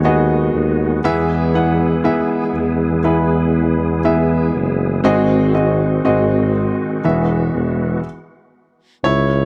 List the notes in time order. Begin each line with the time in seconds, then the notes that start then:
Already playing: D#2 D#3 G#3 B3 F#4 G#4 B4 C#5
0.04 B3 F#4 G#4 D#5
0.54 D#2
1.04 E2 E3 B3 E4 G#4 E5
1.54 B3 E4 G#4 F#5
2.04 B3 E4 G#4 E5
2.54 E2
3.04 B3 E4 G#4 B4
4.05 B3 E4 G#4 E5
4.55 F#1
5.03 G#1 G#2 D#3 C4 F#4 G#4 D#5
5.54 C4 F#4 G#4 D#5
6.05 G#1 C4 F#4 G#4 D#5
7.04 E1 E3 B3 F#4 G#4 E5
7.55 E1
9.04 C#2 E4 C#5